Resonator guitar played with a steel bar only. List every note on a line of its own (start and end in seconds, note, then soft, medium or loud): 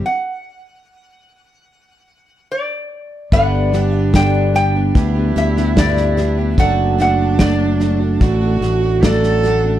0.06 2.47 F#5 medium
2.52 3.35 D5 medium
3.33 3.94 F#5 loud
3.94 4.15 E5 loud
4.16 4.54 G5 loud
4.56 5.39 G5 loud
5.38 5.75 E5 medium
5.79 6.62 D5 medium
6.60 7.00 F#5 medium
7.02 7.42 F#5 medium
7.41 9.00 D5 medium
9.05 9.79 D5 medium